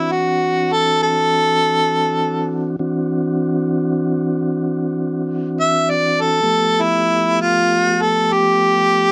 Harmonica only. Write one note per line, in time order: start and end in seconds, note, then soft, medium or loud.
0.00 0.13 E4 medium
0.12 0.74 F#4 medium
0.73 0.99 A4 medium
1.03 2.78 A4 loud
5.60 5.92 E5 medium
5.90 6.22 D5 medium
6.21 6.83 A4 medium
6.82 7.37 E4 medium
7.41 8.03 F4 medium
8.02 8.34 A4 medium
8.33 9.12 G4 loud